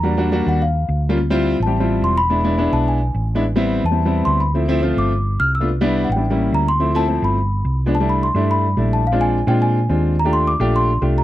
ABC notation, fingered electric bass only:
X:1
M:4/4
L:1/8
Q:1/4=213
K:C
V:1 name="Fingered electric bass" clef=bass
E,,3 _E,,3 D,,2- | D,,3 A,,,3 E,,,2- | E,,,3 B,,,3 A,,,2- | A,,,3 E,,3 D,,2- |
D,,3 G,,,3 C,,2- | C,,3 A,,,3 D,,2- | D,,3 G,,,3 C,,2- | C,,3 G,,3 _B,,,2- |
_B,,,3 _B,,3 _E,,2- | _E,,3 _B,,,3 C,,2 |]